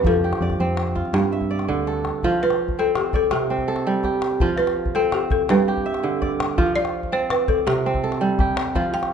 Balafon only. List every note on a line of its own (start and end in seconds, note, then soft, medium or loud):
0.07 0.57 A4 medium
2.43 2.79 B4 loud
2.79 2.97 A4 medium
2.97 3.13 G4 medium
3.16 3.32 A4 medium
3.33 3.66 G4 medium
4.58 4.95 B4 loud
4.95 5.14 A4 medium
5.14 5.32 G4 medium
5.32 5.48 A4 medium
5.50 5.84 B4 medium
6.76 7.13 D5 loud
7.13 7.30 C5 medium
7.31 7.48 B4 medium
7.48 7.67 A4 medium
7.67 8.01 G4 medium
8.94 9.13 G5 loud